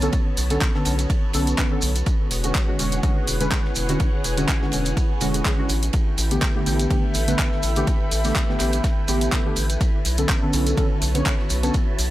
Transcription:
Already playing: B3 F#4 B4 C#5 A5
0.01 D3 B3 C#4 A4, closed hi-hat, maracas
0.13 kick, closed hi-hat, ride, maracas
0.37 B1, open hi-hat, ride, maracas
0.50 D3 B3 C#4 A4, closed hi-hat, ride, maracas
0.61 kick, snare, clap, closed hi-hat, ride, maracas
0.74 D3 B3 C#4 A4, snare
0.85 B1 D3 B3 C#4 A4, open hi-hat, ride, maracas
0.99 closed hi-hat, ride, maracas
1.10 kick, closed hi-hat, ride, maracas
1.33 B1 D3 B3 C#4 A4, open hi-hat, ride, maracas
1.47 closed hi-hat, maracas
1.57 D3 B3 C#4 B4, kick, snare, clap, closed hi-hat, ride, maracas
1.71 D3 B3 C#4 A4
1.82 B1, open hi-hat, ride, maracas
1.95 closed hi-hat, maracas
2.06 E4 G#4 C#5 F#5, kick, closed hi-hat, ride, maracas
2.18 B4
2.31 E1, open hi-hat, ride, maracas
2.43 D3 G#3 C#4 F#4, closed hi-hat, maracas
2.54 kick, snare, clap, closed hi-hat, ride, maracas
2.68 D3 G#3 C#4 F#4
2.79 E1 D3 G#3 C#4 F#4, open hi-hat, ride, maracas
2.92 G#5, closed hi-hat, maracas
3.03 D3 G#3 C#4 F#4, kick, closed hi-hat, ride, maracas
3.27 E1, open hi-hat, ride, maracas
3.40 D3 G#3 C#4 B4, closed hi-hat, maracas
3.51 kick, snare, clap, closed hi-hat, ride, maracas
3.65 snare
3.75 E1, open hi-hat, ride, maracas
3.89 D3 G#3 C#4 F#4, closed hi-hat, maracas
4.00 kick, closed hi-hat, ride, maracas
4.24 E1, open hi-hat, ride, maracas
4.37 D3 G#3 C#4 F#4, closed hi-hat, ride, maracas
4.48 kick, snare, clap, closed hi-hat, ride, maracas
4.61 D3 G#3 C#4 F#4, snare
4.72 E1 D3 G#3 C#4 F#4, open hi-hat, ride, maracas
4.85 closed hi-hat, ride, maracas
4.97 kick, closed hi-hat, ride, maracas
5.21 E1 D3 G#3 C#4 F#4, open hi-hat, ride, maracas
5.34 closed hi-hat, maracas
5.45 D3 G#3 C#4 G#4, kick, snare, clap, closed hi-hat, ride, maracas
5.58 D3 G#3 C#4 F#4
5.69 A1 E4 A4 B4 G5, open hi-hat, ride, maracas
5.83 closed hi-hat, maracas
5.89 E5, ride
5.94 kick, closed hi-hat, maracas
6.18 A1, open hi-hat, ride, maracas
6.23 B5
6.31 D3 A3 B3 G4, closed hi-hat, maracas
6.42 kick, snare, clap, closed hi-hat, ride, maracas
6.55 D3 A3 B3 G4
6.66 A1 D3 A3 B3 G4, open hi-hat, ride, maracas
6.79 closed hi-hat, maracas
6.90 D3 A3 B3 G4, kick, closed hi-hat, ride, maracas
7.14 A1, open hi-hat, ride, maracas
7.27 D3 A3 B3 B4, closed hi-hat, maracas
7.38 kick, snare, clap, closed hi-hat, ride, maracas
7.52 snare
7.63 A1, open hi-hat, ride, maracas
7.76 D3 A3 B3 G4, closed hi-hat, maracas
7.87 kick, closed hi-hat, ride, maracas
8.11 A1, open hi-hat, ride, maracas
8.24 D3 A3 B3 G4, open hi-hat, ride, maracas
8.35 kick, snare, clap, closed hi-hat, ride, maracas
8.48 D3 A3 B3 G4, snare
8.60 A1 D3 A3 B3 G4, clap, open hi-hat, ride, maracas
8.72 closed hi-hat, ride, maracas
8.84 kick, snare, closed hi-hat, ride, maracas
9.08 A1 D3 A3 B3 G4, open hi-hat, ride, maracas
9.21 closed hi-hat, maracas
9.32 D3 A3 B3 A4, kick, snare, clap, closed hi-hat, ride, maracas
9.45 D3 A3 B3 G4
9.56 A1, open hi-hat, ride, maracas
9.70 closed hi-hat, maracas
9.81 B3 C#5 A5, kick, closed hi-hat, ride, maracas
9.94 F#4
10.05 B1, open hi-hat, ride, maracas
10.18 D3 B3 C#4 A4, closed hi-hat, maracas
10.29 kick, snare, clap, closed hi-hat, ride, maracas
10.42 D3 B3 C#4 A4
10.53 B1 D3 B3 C#4 A4, open hi-hat, ride, maracas
10.66 closed hi-hat, maracas
10.77 D3 B3 C#4 A4, kick, closed hi-hat, ride, maracas
11.02 B1, open hi-hat, ride, maracas
11.14 D3 B3 C#4 C#5, closed hi-hat, maracas
11.25 kick, snare, clap, closed hi-hat, ride, maracas
11.39 snare
11.50 B1, open hi-hat, ride, maracas
11.63 D3 B3 C#4 A4, closed hi-hat, maracas
11.74 kick, closed hi-hat, ride, maracas
11.98 B1, open hi-hat, ride, maracas

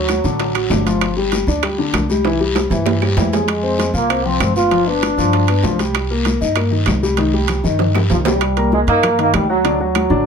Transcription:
Already playing: D2 F#3 F#4
0.09 high bongo, high conga, high timbale, short guiro, claves
0.24 A1 D3 D4, high bongo, high conga, short guiro
0.40 high bongo, high conga, high timbale, long guiro
0.55 F#3 F#4, high bongo, high conga, high timbale, claves
0.70 G1 D3 D4, high bongo, low bongo, high conga, low timbale, short guiro
0.86 F3 F4, high bongo, high conga, high timbale, short guiro
1.01 high bongo, high conga, high timbale, long guiro, claves
1.17 G3 G4, high bongo, high conga
1.32 high bongo, high conga, high timbale, short guiro
1.47 D2 D4 D5, high bongo, short guiro
1.63 G3 G4, high bongo, high conga, high timbale, long guiro, claves
1.78 D3 D4, high bongo, high conga
1.93 C2, high bongo, low bongo, high conga, high timbale, short guiro, claves
2.09 G3 G4, high conga, short guiro
2.25 E3 E4, high bongo, high conga, high timbale, long guiro
2.40 G3 G4
2.55 high bongo, high conga, high timbale, short guiro, claves
2.70 G2 E3 E4, high bongo, low timbale, short guiro
2.86 high bongo, high conga, low timbale, long guiro
3.01 G3 G4, high bongo, high conga, low timbale, claves
3.17 F2 E3 G3 E4, high bongo, low bongo, high conga, low timbale, short guiro
3.32 G#3 G#4, high bongo, high conga, low timbale, short guiro
3.48 high bongo, high conga, high timbale, long guiro, claves
3.63 C4 C5, high bongo, high conga
3.79 high bongo, high conga, high timbale, short guiro
3.94 C2 A#3 F4 F5, high bongo, high conga, short guiro
4.09 C4 C5, high bongo, high conga, high timbale, long guiro, claves
4.25 F3 C4 F4, high bongo, high conga
4.40 G1, high bongo, low bongo, high conga, high timbale, short guiro, claves
4.56 B3 F4 B4, high conga, short guiro
4.71 F3 F4, high bongo, high conga, high timbale, long guiro
4.87 B3 D4 B4, high conga
5.03 high bongo, high conga, high timbale, short guiro, claves
5.17 G2 F3 F4, high bongo, high conga, short guiro
5.33 high bongo, high conga, high timbale, long guiro
5.48 B3 B4, high bongo, high conga, high timbale, claves
5.63 C2 F3 F4, high bongo, low bongo, high conga, low timbale, short guiro
5.79 G3 G4, high bongo, high conga, high timbale, short guiro
5.95 high bongo, high conga, high timbale, long guiro, claves
6.10 A#3 A#4, high bongo, high conga
6.25 high bongo, high conga, high timbale, short guiro
6.41 G2 D#4 D#5, high bongo, high conga, short guiro
6.56 A#3 A#4, high bongo, high conga, high timbale, long guiro, claves
6.71 D#3 D#4, high bongo, high conga
6.86 C2, high bongo, low bongo, high conga, high timbale, low timbale, short guiro, claves
7.03 G3 G4, high conga, short guiro
7.17 D#3 D#4, high bongo, high conga, high timbale, long guiro
7.34 G3 G4, high conga
7.48 high bongo, low conga, high timbale, short guiro, claves
7.64 G2 D#3 D#4, low conga, short guiro
7.79 low bongo, low conga, high timbale, long guiro
7.95 G3 G4, low bongo, low conga, high timbale, claves
8.10 C2 D#3 F3 D#4, low conga, low timbale, short guiro
8.25 G3 G4, low bongo, low conga, low timbale, short guiro
8.41 high bongo, high conga, high timbale, claves
8.57 A#3 A#4 A#5, high bongo, high conga, high timbale
8.72 G#3, high bongo, high conga
8.87 G2 A#3 D#4 D#5 D#6, high bongo, high conga, high timbale
9.03 A#3 A#4 A#5, high bongo, high conga, low conga, high timbale, claves
9.18 D#3 A#3 D#4 D#5, high conga, high timbale
9.33 D2 G3, high bongo, low bongo, high conga, high timbale, low timbale, claves
9.49 F#3 F#4 F#5, high bongo
9.64 D3 D4 D5, high bongo, high conga, high timbale
9.80 F#3 F#4 F#5, high bongo, high conga
9.95 high bongo, high conga, high timbale, claves
10.10 A1 D3 D4 D5, high bongo, high conga

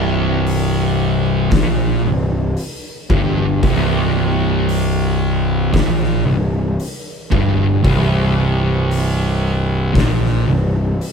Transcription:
Already playing: C1 C2
0.47 open hi-hat
1.51 A#1 A#2, kick, snare, open hi-hat
2.04 C1 C2
2.57 open hi-hat
3.10 G1 G2, kick
3.63 C1 C2, kick, open hi-hat
4.69 open hi-hat
5.73 A#1 A#2, kick, snare, open hi-hat
6.03 snare
6.26 C1 C2
6.80 open hi-hat
7.31 G1 G2, kick
7.83 C1 C2, kick, open hi-hat
8.91 open hi-hat
9.94 A#1 A#2, kick, open hi-hat
9.98 snare
10.26 snare
10.47 C1 C2
11.01 open hi-hat

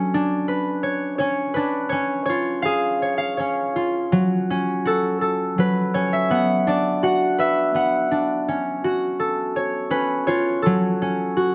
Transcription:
Already playing: C#4 F#4 A4 B4
0.14 D4
0.48 B4
0.83 C#5
1.18 C#4 C#5
1.54 D4 B4
1.89 C#4 C#5
2.26 F4 C#5
2.62 G#4 F5
3.02 C#5
3.18 F5
3.37 C#4 C#5
3.76 F4
4.12 F#3
4.50 C#4
4.85 F#4 A4
5.21 A4
5.58 F#3 B4
5.94 C#4 C#5
6.13 E5
6.30 B3 F#5
6.67 D4 D5
7.03 F#4 F#5
7.38 B4 E5
7.74 B3 F#5
8.11 D4
8.48 C#4
8.84 F#4
9.20 A4
9.56 C#5
9.90 C#4 B4
10.27 F4 C#5
10.62 F#3 A4
11.02 C#4
11.37 F#4

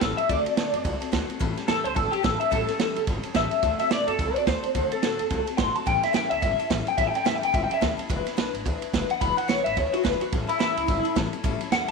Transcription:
0.00 A1 A2 E3 G3 C#4 E4 A4, kick, snare, ride
0.17 G3 C#4 E4 A4 E5, ride
0.29 D2 D3 A3 C4 F#4 A4 D5, kick, ride
0.45 C4 F#4 A4, muted upright bass stroke, ride
0.57 A2 D3 A3 C4 F#4 A4, snare, ride
0.73 F#2 C4 F#4 A4, ride
0.84 C2 A3 C4 F#4 A4, kick, ride
1.00 C4 F#4 A4, muted upright bass stroke, ride
1.12 D2 D3 A3 C4 F#4 A4, kick, snare, ride
1.28 C4 F#4 A4, muted upright bass stroke, ride
1.39 A1 A2 E3 G3 C#4 G4 A4, kick, ride
1.56 G3 C#4 G4 A4, muted upright bass stroke, snare, ride
1.68 E2 A2 E3 G3 C#4 G4 A4, snare, ride
1.84 C#2 G3 C#4 G4 A4 C5, ride
1.95 G1 G3 C#4 G4 A4, kick, ride
2.11 G3 C#4 G4 A4, ride
2.23 A1 A2 E3 G3 C#4 G4 A4, kick, snare, ride
2.40 G3 C#4 G4 A4 E5, ride
2.51 A1 A2 E3 G3 C#4 G4 A4, kick, ride
2.67 G3 C#4 G4 A4, muted upright bass stroke, snare, ride
2.79 E2 A2 E3 G3 C#4 G4 A4, snare, ride
2.96 C#2 G3 C#4 G4 A4, ride
3.07 G1 G3 C#4 G4 A4, kick, ride
3.23 G3 C#4 G4 A4, muted upright bass stroke, ride
3.34 A1 A2 E3 G3 C#4 G4 A4 E5, kick, snare, ride
3.51 G3 C#4 G4 A4, muted upright bass stroke, ride
3.62 D2 D3 A3 C4 F#4 A4, kick, ride
3.79 C4 F#4 A4 E5, muted upright bass stroke, ride
3.91 A2 D3 A3 C4 F#4 A4 D5, snare, ride
4.07 F#2 C4 F#4 A4, ride
4.19 C2 A3 C4 F#4 A4, kick, ride
4.35 F#4 A4 D5, muted upright bass stroke, ride
4.39 C4
4.47 D2 D3 A3 C4 F#4 A4 C5, kick, snare, ride
4.63 C4 F#4 A4, muted upright bass stroke, ride
4.75 D2 D3 A3 C4 F#4 A4, kick, ride
4.91 C4 F#4 A4, muted upright bass stroke, ride
5.02 A2 D3 A3 C4 F#4 A4, snare, ride
5.19 F#2 C4 F#4 A4, ride
5.30 C2 A3 C4 F#4 A4, kick, ride
5.47 C4 F#4 A4, muted upright bass stroke, ride
5.58 G1 D3 A3 C4 F#4 A4 C6, kick, snare, ride
5.75 C4 F#4 A4 A5, muted upright bass stroke, ride
5.86 A1 A2 E3 G3 C#4 E4 A4 G5, kick, ride
6.03 G3 C#4 E4 A4 E5, snare, ride
6.13 E2 A2 E3 G3 C#4 E4 A4 G5, snare, ride
6.30 C#2 G3 C#4 E4 A4 E5, ride
6.41 G1 G3 C#4 E4 A4 E5, kick, ride
6.58 G3 C#4 E4 A4, ride
6.70 A1 A2 E3 G3 C#4 E4 A4, kick, snare, ride
6.86 G3 C#4 E4 A4 G5, muted upright bass stroke, ride
6.97 A1 A2 E3 G3 C#4 E4 A4 E5, kick, ride
7.07 G5
7.13 G3 C#4 E4 A4 G5, muted upright bass stroke, ride
7.24 E2 A2 E3 G3 C#4 E4 A4 E5, snare, ride
7.35 G5
7.41 C#2 G3 C#4 E4 A4 G5, ride
7.52 G1 G3 C#4 E4 A4 E5, kick, ride
7.64 G5
7.70 G3 C#4 E4 A4 E5, muted upright bass stroke, ride
7.81 D2 A2 E3 G3 C#4 E4 A4, kick, snare, ride
7.97 G3 C#4 E4 A4, muted upright bass stroke, ride
8.09 E1 E3 G#3 D4 E4 B4, kick, ride
8.25 D4 E4 B4, muted upright bass stroke, snare, ride
8.37 B1 E3 G#3 D4 E4 B4, snare, ride
8.53 G#1 D4 E4 B4, ride
8.65 D2 G#3 D4 E4 B4, kick, ride
8.82 D4 E4 B4, muted upright bass stroke, ride
8.93 E1 E3 G#3 D4 E4 B4, kick, snare, ride
9.09 D4 E4 B4 F#5, muted upright bass stroke, ride
9.20 E1 E3 G#3 D4 E4 B4 B5, kick, ride
9.37 D4 E4 B4 F#5, ride
9.48 B1 E3 G#3 D4 E4 B4 C#5, snare, ride
9.64 G#1 D4 E4 B4 E5, ride
9.75 D2 G#3 D4 E4 B4 C#5, kick, ride
9.92 D4 E4 F#4 B4, muted upright bass stroke, ride
10.03 E1 E3 G#3 D4 E4 B4, kick, snare, ride
10.20 D4 E4 F#4 B4, muted upright bass stroke, ride
10.32 A1 A2 E3 G3 C#4 E4 A4, kick, ride
10.47 G3 C#4 E4 A4, ride
10.59 E2 A2 E3 G3 C#4 E4 A4, snare, ride
10.75 C#2 G3 C#4 E4 A4, ride
10.87 G1 G3 C#4 E4 A4, kick, ride
11.03 G3 C#4 E4 A4, ride
11.15 A1 A2 E3 G3 C#4 E4 A4, kick, snare, ride
11.33 G3 C#4 E4 A4, ride
11.44 A1 A2 E3 G3 C#4 E4 A4, kick, ride
11.60 G3 C#4 E4 A4, muted upright bass stroke, ride
11.70 E2 A2 E3 G3 C#4 E4 A4 F#5, snare, ride
11.88 C#2 A4, ride

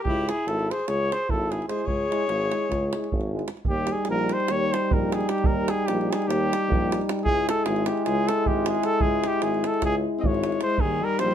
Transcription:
0.03 C#2 G4, davul low
0.07 E4
0.29 E4 G#4, davul high
0.46 G#1 E4 A4, davul high
0.59 davul high
0.71 G#4 C5, davul high
0.79 davul high
0.88 C#2 G#4 C#5, davul high
1.11 G#4 C5, davul high
1.29 G#1 E4 A4, davul low
1.51 E4 G#4, davul high
1.62 davul high
1.68 G#3 E4 G#4 C5, davul high
1.79 davul high
1.83 C#2 G#4 C#5
1.87 davul low
2.08 G#3 E4
2.12 davul high
2.20 davul high
2.28 G#1, davul high
2.41 davul high
2.50 G#3 E4, davul high
2.70 C#2, davul high, davul low
2.93 G#3 E4, davul high
3.04 davul high
3.12 G#1, davul low
3.21 davul high
3.31 G#3 E4
3.39 davul high
3.48 davul high
3.57 davul high
3.65 D#2 G3 D#4 G4, davul low
3.87 davul high
3.92 G#4
4.05 davul high
4.09 A#1 A#4
4.19 davul high
4.29 C5, davul high
4.40 davul high
4.48 D#2 C#5, davul high
4.73 C5, davul high
4.91 A#1 A#4, davul low
5.12 G#4, davul high
5.21 davul high
5.29 G4, davul high
5.38 davul high
5.44 D#2 A#4, davul low
5.68 G#4, davul high
5.87 A#1 G4, davul high
6.01 davul high
6.11 G#4, davul high
6.22 davul high
6.28 D#2 G4, davul high
6.53 davul high
6.68 A#1, davul low
6.92 davul high
7.01 davul high
7.09 davul high
7.19 davul high
7.23 C#2 G#3 E4 G#4, davul low
7.49 A4, davul high
7.65 G#1 G#4, davul high
7.76 davul high
7.86 G4, davul high
7.97 davul high
8.05 C#2 G#4, davul high
8.28 A4, davul high
8.46 G#1 G4, davul low
8.66 G#4, davul high
8.75 davul high
8.83 A4, davul high
8.93 davul high
9.00 C#2 G#4, davul low
9.24 G4, davul high
9.33 davul high
9.42 G#1 G#4, davul high
9.54 davul high
9.64 A4, davul high
9.74 davul high
9.82 C#2 G#4, davul high, davul low
9.92 davul high
10.18 C4 D#5
10.24 G#1 G#3 C#5, davul low
10.35 davul high
10.44 davul high
10.52 davul high
10.61 G#3 C5, davul high
10.70 davul high
10.78 D#2 D#3 G3 D#4 G#4, davul low
11.01 G3 A#4
11.19 A#1 G3 C5, davul high
11.31 davul high

